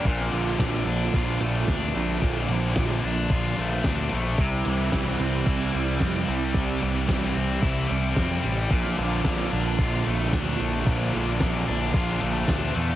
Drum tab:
CC |x---------------|----------------|----------------|----------------|
HH |--x---x---x---x-|--x---x---x---x-|--x---x---x---x-|--x---x---x---x-|
SD |-o--o-------o---|----o-------o---|----o-------o---|----o-------o---|
BD |o---o---o---o---|o---o---o---o---|o---o---o---o---|o---o---o---o---|

CC |----------------|----------------|
HH |--x---x---x---x-|--x---x---x---x-|
SD |-o--o-------o---|----o-------o---|
BD |o---o---o---o---|o---o---o---o---|